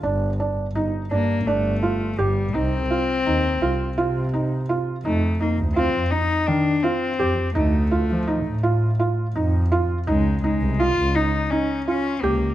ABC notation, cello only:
X:1
M:7/8
L:1/8
Q:1/4=84
K:Fmix
V:1 name="Cello"
z3 B, A,2 G, | C4- C z2 | A, B, C E D C2 | A,3 z4 |
_A, A, F E _D D B, |]